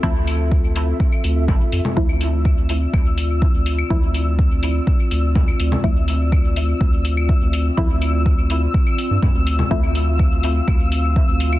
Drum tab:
HH |--o---o---o---o-|--o---o---o---o-|--o---o---o---o-|--o---o---o---o-|
CL |--x------x------|-x------x------x|------x------x--|----x------x----|
CG |------------O--O|----------------|------------O--O|----------------|
BD |o---o---o---o---|o---o---o---o---|o---o---o---o---|o---o---o---o---|

HH |--o---o---o---o-|--o---o---o---o-|
CL |--x------x------|-x------x------x|
CG |------------O--O|----------------|
BD |o---o---o---o---|o---o---o---o---|